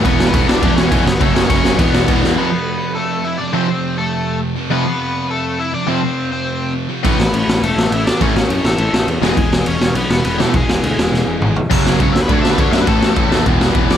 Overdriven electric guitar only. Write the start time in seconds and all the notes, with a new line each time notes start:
0.04 B3 B4
0.27 B3 B4
0.47 D4 D5
0.76 C#4 C#5
1.06 B3 B4
1.21 A3 A4
1.34 C#4 C#5
1.49 C#4 C#5
1.79 B3 B4
2.38 B3 B4
2.95 A3 A4
3.25 E4 E5
3.38 D4 D5
3.53 C4 C5
3.98 A3 A4
4.71 B3 B4
5.30 A3 A4
5.59 E4 E5
5.74 D4 D5
5.88 C4 C5
6.32 C4 C5
7.05 B3 B4
7.63 A3 A4
7.93 E4 E5
8.06 D4 D5
8.22 C#4 C#5
8.66 A3 A4
9.23 G#3 G#4
9.67 C#4 C#5
9.96 B3 B4
10.24 B3 B4
10.41 A3 A4
10.56 G#3 G#4
12.03 C#5
12.12 E5
12.22 B4
12.32 C#5
12.41 E5
12.51 B4
12.61 C#5
12.71 E5
12.80 B4
12.88 A4
13.91 D5